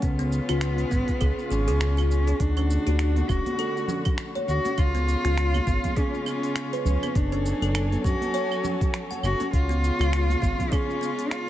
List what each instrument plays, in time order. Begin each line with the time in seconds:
Already playing: string section C#4
0.02 analog synth bass C#2, string section C#3 G#3 F4, cello B3, kick, open hi-hat, shaker
0.19 kalimba B3, open hi-hat, shaker
0.32 shaker
0.49 analog synth bass C#2, kalimba F4, finger snap, open hi-hat, claves, shaker
0.61 finger snap, open hi-hat, shaker
0.78 open hi-hat, shaker
0.91 analog synth bass G#1, kalimba B3, kick, shaker
1.08 kick, open hi-hat, shaker
1.21 analog synth bass C#2, kalimba G#4, kick, open hi-hat, claves, shaker
1.39 shaker
1.51 analog synth bass G#1, cello C#4, kalimba G#4, shaker
1.68 analog synth bass C#2, kalimba G#4, open hi-hat, shaker
1.80 kalimba C#4, finger snap, open hi-hat, shaker
1.97 kalimba F4, open hi-hat, claves, shaker
2.11 cello C#4, shaker
2.27 kalimba G#4, open hi-hat, shaker
2.40 analog synth bass D2, string section D3 A3 F#4, cello D4, kick, open hi-hat, shaker
2.57 kalimba C#4, open hi-hat, claves
2.70 shaker
2.87 analog synth bass D2, kalimba F#4, open hi-hat, muted conga, shaker
2.99 finger snap, open hi-hat, shaker
3.16 open hi-hat, high conga, shaker
3.29 analog synth bass D1, kalimba C#4, cello F#4, kick, muted conga, claves, shaker
3.46 open hi-hat, high conga, shaker
3.59 kalimba A4, open hi-hat, shaker
3.77 shaker
3.88 kalimba C#4, high conga, low conga, shaker
4.05 kick, open hi-hat, low conga, claves, shaker
4.18 finger snap, open hi-hat, shaker
4.35 kalimba C#5, open hi-hat, high conga, shaker
4.48 analog synth bass D2, cello F#4, high conga, shaker
4.65 kalimba C#4, open hi-hat, muted conga, shaker
4.78 analog synth bass C#2, string section C#3 G#3 F4 C#5, cello F4, kick, open hi-hat, claves, shaker
4.95 kalimba B3, open hi-hat, shaker
5.08 shaker
5.25 analog synth bass C#2, kalimba F4, finger snap, open hi-hat, shaker
5.38 finger snap, open hi-hat, shaker
5.54 open hi-hat, high conga, claves, shaker
5.67 analog synth bass G#1, kalimba B3, kick, muted conga, shaker
5.84 kick, open hi-hat, high conga, low conga, shaker
5.96 cello C#4, kalimba G#4, kick, open hi-hat, shaker
6.13 high conga, shaker
6.26 kalimba B3, cello C#4, claves, shaker
6.43 open hi-hat, shaker
6.56 finger snap, open hi-hat, shaker
6.73 kalimba B4, open hi-hat, shaker
6.85 analog synth bass C#2, cello C#4, low conga, shaker
7.02 kalimba B3, open hi-hat, high conga, claves, shaker
7.15 analog synth bass F#1, string section F#3 A4 G#5, cello D4, kick, open hi-hat, shaker
7.32 kalimba C#4, open hi-hat
7.46 shaker
7.62 analog synth bass F#1, kalimba A4, open hi-hat, muted conga, shaker
7.75 finger snap, open hi-hat, claves, shaker
7.92 open hi-hat, high conga, shaker
8.04 analog synth bass F#2, kalimba C#4, cello F#4, kick, muted conga, shaker
8.21 open hi-hat, high conga, shaker
8.34 kalimba C#5, open hi-hat, shaker
8.52 claves, shaker
8.64 kalimba C#4, high conga, low conga, shaker
8.81 kick, open hi-hat, low conga, shaker
8.94 finger snap, open hi-hat, shaker
9.11 kalimba F#5, open hi-hat, high conga, shaker
9.23 analog synth bass F#1, cello F#4, high conga, claves, shaker
9.40 kalimba C#4, open hi-hat, muted conga, shaker
9.53 analog synth bass C#2, string section C#3 G#3 F4, cello F4, kick, open hi-hat, shaker
9.69 kalimba B3, open hi-hat, shaker
9.84 shaker
9.99 analog synth bass C#2, kalimba F4, finger snap, open hi-hat, claves, shaker
10.13 finger snap, open hi-hat, shaker
10.30 open hi-hat, high conga, shaker
10.42 analog synth bass G#1, kalimba B3, kick, muted conga, shaker
10.58 kick, open hi-hat, high conga, low conga, shaker
10.72 cello C#4, kalimba G#4, kick, open hi-hat, claves, shaker
10.89 high conga, shaker
11.01 kalimba B3, shaker
11.19 open hi-hat, shaker
11.31 cello F4, finger snap, open hi-hat, shaker